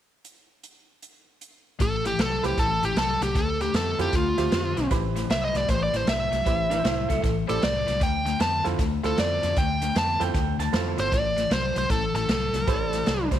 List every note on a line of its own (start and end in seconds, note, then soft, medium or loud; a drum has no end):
0.25 closed hi-hat medium
0.63 closed hi-hat soft
1.02 closed hi-hat medium
1.41 closed hi-hat medium
1.79 2.12 A1 medium
1.79 2.02 A2 medium
1.79 2.02 E3 medium
1.79 2.05 A4 medium
1.79 kick loud
1.79 snare soft
1.79 closed hi-hat medium
2.05 2.17 A2 medium
2.05 2.17 E3 medium
2.05 2.20 G4 medium
2.05 snare soft
2.05 closed hi-hat medium
2.19 2.39 C2 medium
2.19 2.41 A2 medium
2.19 2.41 F#3 medium
2.19 2.45 A4 medium
2.19 snare loud
2.19 closed hi-hat medium
2.43 2.55 C2 medium
2.43 2.56 A2 medium
2.43 2.56 F#3 medium
2.43 2.56 C4 medium
2.43 2.56 E4 medium
2.43 2.56 G4 medium
2.43 2.59 G4 medium
2.43 2.56 B4 medium
2.43 snare soft
2.43 closed hi-hat medium
2.57 2.78 A1 medium
2.57 2.80 A2 medium
2.57 2.80 E3 medium
2.57 2.85 A4 medium
2.57 kick loud
2.57 snare soft
2.57 closed hi-hat medium
2.83 2.94 A1 medium
2.83 2.95 A2 medium
2.83 2.95 E3 medium
2.83 2.98 G4 medium
2.83 snare soft
2.83 closed hi-hat medium
2.96 3.17 C2 medium
2.96 3.19 A2 medium
2.96 3.19 F#3 medium
2.96 3.21 A4 medium
2.96 snare medium
2.96 closed hi-hat medium
3.21 3.32 C2 medium
3.21 3.34 A2 medium
3.21 3.34 F#3 medium
3.21 3.36 G4 medium
3.21 snare soft
3.21 closed hi-hat medium
3.35 3.67 D2 medium
3.35 3.57 D3 medium
3.35 3.58 A3 medium
3.35 3.60 A4 medium
3.35 kick loud
3.35 snare soft
3.35 closed hi-hat medium
3.60 3.73 D3 medium
3.60 3.73 A3 medium
3.60 3.74 G4 medium
3.60 snare soft
3.60 closed hi-hat medium
3.73 3.94 F2 medium
3.73 3.96 D3 medium
3.73 3.97 B3 medium
3.73 3.99 A4 medium
3.73 snare medium
3.73 closed hi-hat medium
3.98 4.10 F2 medium
3.98 4.12 D3 medium
3.98 4.12 B3 medium
3.98 4.11 C4 medium
3.98 4.11 E4 medium
3.98 4.11 F4 medium
3.98 4.15 G4 medium
3.98 4.12 A4 medium
3.98 snare soft
3.98 closed hi-hat medium
4.13 4.34 D2 medium
4.13 4.35 D3 medium
4.13 4.36 A3 medium
4.13 4.89 F4 medium
4.13 kick medium
4.13 snare soft
4.13 closed hi-hat medium
4.38 4.49 D2 medium
4.38 4.50 D3 medium
4.38 4.50 A3 medium
4.38 4.88 C4 medium
4.38 4.88 F4 medium
4.38 4.88 G4 medium
4.38 4.88 E5 medium
4.38 snare soft
4.38 closed hi-hat medium
4.51 4.72 F2 medium
4.51 4.74 D3 medium
4.51 4.74 B3 medium
4.51 snare loud
4.51 closed hi-hat medium
4.77 4.88 B1 medium
4.77 4.89 D3 medium
4.77 4.89 B3 medium
4.77 snare soft
4.77 closed hi-hat medium
4.91 5.23 A1 medium
4.91 5.13 A2 medium
4.91 5.13 E3 medium
4.91 5.99 C4 medium
4.91 5.99 E4 medium
4.91 5.99 G4 medium
4.91 5.99 B4 medium
4.91 kick loud
4.91 snare soft
4.91 closed hi-hat medium
5.16 5.28 A2 medium
5.16 5.28 E3 medium
5.16 snare soft
5.16 closed hi-hat medium
5.30 5.50 C2 medium
5.30 5.52 A2 medium
5.30 5.52 F#3 medium
5.30 5.43 E5 medium
5.30 snare loud
5.30 closed hi-hat medium
5.45 5.56 D#5 medium
5.54 5.66 C2 medium
5.54 5.67 A2 medium
5.54 5.67 F#3 medium
5.54 5.69 D5 medium
5.54 snare soft
5.54 closed hi-hat medium
5.68 5.89 A1 medium
5.68 5.91 A2 medium
5.68 5.91 E3 medium
5.68 5.82 C5 medium
5.68 kick medium
5.68 snare soft
5.68 closed hi-hat medium
5.83 5.96 D5 medium
5.93 6.04 A1 medium
5.93 6.06 A2 medium
5.93 6.06 E3 medium
5.93 6.08 C5 medium
5.93 snare soft
5.93 closed hi-hat medium
6.07 6.28 C2 medium
6.07 6.29 A2 medium
6.07 6.30 F#3 medium
6.07 7.21 E5 medium
6.07 snare loud
6.07 closed hi-hat medium
6.32 6.43 C2 medium
6.32 6.44 A2 medium
6.32 6.45 F#3 medium
6.32 snare soft
6.32 closed hi-hat medium
6.45 6.78 A1 medium
6.45 6.68 A2 medium
6.45 6.68 E3 medium
6.45 6.68 C4 medium
6.45 6.68 E4 medium
6.45 6.68 G4 medium
6.45 6.69 B4 medium
6.45 kick medium
6.45 snare soft
6.45 closed hi-hat medium
6.70 6.83 A2 medium
6.70 6.83 E3 medium
6.70 6.82 E4 medium
6.70 6.83 C5 medium
6.70 snare soft
6.70 closed hi-hat medium
6.83 7.05 C2 medium
6.83 7.07 A2 medium
6.83 7.07 F#3 medium
6.83 7.07 E4 medium
6.83 7.09 C5 medium
6.83 snare loud
6.83 closed hi-hat medium
7.09 7.21 C2 medium
7.09 7.21 A2 medium
7.09 7.22 F#3 medium
7.09 7.35 A4 medium
7.09 kick medium
7.09 snare soft
7.09 closed hi-hat medium
7.22 7.44 A1 medium
7.22 7.45 A2 medium
7.22 7.46 E3 medium
7.22 kick loud
7.22 snare soft
7.22 closed hi-hat medium
7.47 7.60 A1 medium
7.47 7.60 A2 medium
7.47 7.61 E3 medium
7.47 7.60 C4 medium
7.47 7.60 E4 medium
7.47 7.61 G4 medium
7.47 7.62 A4 medium
7.47 7.61 D5 medium
7.47 snare soft
7.47 closed hi-hat medium
7.62 7.83 C2 medium
7.62 7.84 A2 medium
7.62 7.85 F#3 medium
7.62 8.01 D5 medium
7.62 snare loud
7.62 closed hi-hat medium
7.87 7.99 C2 medium
7.87 7.99 A2 medium
7.87 8.00 F#3 medium
7.87 snare soft
7.87 closed hi-hat medium
8.00 8.33 D2 medium
8.00 8.23 D3 medium
8.00 8.23 A3 medium
8.00 8.40 G5 medium
8.00 kick loud
8.00 snare soft
8.00 closed hi-hat medium
8.25 8.38 D3 medium
8.25 8.38 A3 medium
8.25 snare soft
8.25 closed hi-hat medium
8.39 8.61 F2 medium
8.39 8.62 D3 medium
8.39 8.62 B3 medium
8.39 8.65 A5 medium
8.39 snare loud
8.39 closed hi-hat medium
8.64 8.77 F2 medium
8.64 8.77 D3 medium
8.64 8.78 B3 medium
8.64 8.77 C4 medium
8.64 8.77 E4 medium
8.64 8.77 F4 medium
8.64 8.77 A4 medium
8.64 snare soft
8.64 closed hi-hat medium
8.78 9.00 D2 medium
8.78 9.01 D3 medium
8.78 9.01 A3 medium
8.78 kick medium
8.78 snare soft
8.78 closed hi-hat medium
9.03 9.15 D2 medium
9.03 9.16 D3 medium
9.03 9.16 A3 medium
9.03 9.53 C4 medium
9.03 9.53 E4 medium
9.03 9.54 F4 medium
9.03 9.54 A4 medium
9.03 9.18 A4 medium
9.03 snare soft
9.03 closed hi-hat medium
9.17 9.39 F2 medium
9.17 9.40 D3 medium
9.17 9.40 B3 medium
9.17 9.56 D5 medium
9.17 snare loud
9.17 closed hi-hat medium
9.43 9.54 F2 medium
9.43 9.55 D3 medium
9.43 9.55 B3 medium
9.43 snare soft
9.43 closed hi-hat medium
9.57 9.89 D2 medium
9.57 9.79 D3 medium
9.57 9.79 A3 medium
9.57 9.95 G5 medium
9.57 kick loud
9.57 snare soft
9.57 closed hi-hat medium
9.82 9.94 D3 medium
9.82 9.94 A3 medium
9.82 snare soft
9.82 closed hi-hat medium
9.95 10.16 F2 medium
9.95 10.18 D3 medium
9.95 10.18 B3 medium
9.95 10.21 A5 medium
9.95 snare loud
9.95 closed hi-hat medium
10.20 10.32 F2 medium
10.20 10.33 D3 medium
10.20 10.33 B3 medium
10.20 10.32 C4 medium
10.20 10.33 E4 soft
10.20 10.33 F4 medium
10.20 10.33 A4 medium
10.20 10.59 G5 medium
10.20 snare soft
10.20 closed hi-hat medium
10.34 10.55 D2 medium
10.34 10.57 D3 medium
10.34 10.57 A3 medium
10.34 kick loud
10.34 snare soft
10.34 closed hi-hat medium
10.58 10.70 D2 medium
10.58 10.72 D3 medium
10.58 10.72 A3 medium
10.58 10.85 A5 medium
10.58 snare soft
10.58 closed hi-hat medium
10.72 10.94 F2 medium
10.72 10.96 D3 medium
10.72 10.96 B3 medium
10.72 11.12 C4 medium
10.72 11.12 E4 medium
10.72 11.12 F4 medium
10.72 11.12 A4 medium
10.72 snare loud
10.72 closed hi-hat medium
10.98 11.09 G1 medium
10.98 11.10 D3 medium
10.98 11.11 B3 medium
10.98 11.12 C5 medium
10.98 snare soft
10.98 closed hi-hat medium
11.12 11.44 A1 medium
11.12 11.34 A2 medium
11.12 11.35 E3 medium
11.12 11.51 D5 medium
11.12 kick loud
11.12 snare soft
11.12 closed hi-hat medium
11.36 11.49 A2 medium
11.36 11.49 E3 medium
11.36 snare soft
11.36 closed hi-hat medium
11.50 11.71 C2 medium
11.50 11.73 A2 medium
11.50 11.73 F#3 medium
11.50 11.76 C5 medium
11.50 snare loud
11.50 closed hi-hat medium
11.75 11.87 C2 medium
11.75 11.88 A2 medium
11.75 11.88 F#3 medium
11.75 11.90 C5 medium
11.75 snare soft
11.75 closed hi-hat medium
11.89 12.11 A1 medium
11.89 12.12 A2 medium
11.89 12.12 E3 medium
11.89 12.15 A4 medium
11.89 kick loud
11.89 snare soft
11.89 closed hi-hat medium
12.14 12.26 A1 medium
12.14 12.27 A2 medium
12.14 12.27 E3 medium
12.14 13.28 A4 medium
12.14 snare soft
12.14 closed hi-hat medium
12.28 12.49 C2 medium
12.28 12.51 A2 medium
12.28 12.51 F#3 medium
12.28 snare loud
12.28 closed hi-hat medium
12.53 12.65 C2 medium
12.53 12.66 A2 medium
12.53 12.66 F#3 medium
12.53 snare soft
12.53 closed hi-hat medium
12.67 13.00 A1 medium
12.67 12.90 A2 medium
12.67 12.90 E3 medium
12.67 13.39 C4 medium
12.67 13.39 E4 medium
12.67 13.39 G4 soft
12.67 13.39 B4 medium
12.67 13.30 D5 medium
12.67 kick loud
12.67 snare soft
12.67 closed hi-hat medium
12.92 13.05 A2 medium
12.92 13.05 E3 medium
12.92 snare soft
12.92 closed hi-hat medium
13.06 13.27 C2 medium
13.06 13.29 A2 medium
13.06 13.29 F#3 medium
13.06 snare loud
13.06 closed hi-hat medium
13.31 13.39 C2 medium
13.31 13.39 A2 medium
13.31 13.39 F#3 medium
13.31 13.39 C5 medium
13.31 kick medium
13.31 snare soft
13.31 closed hi-hat medium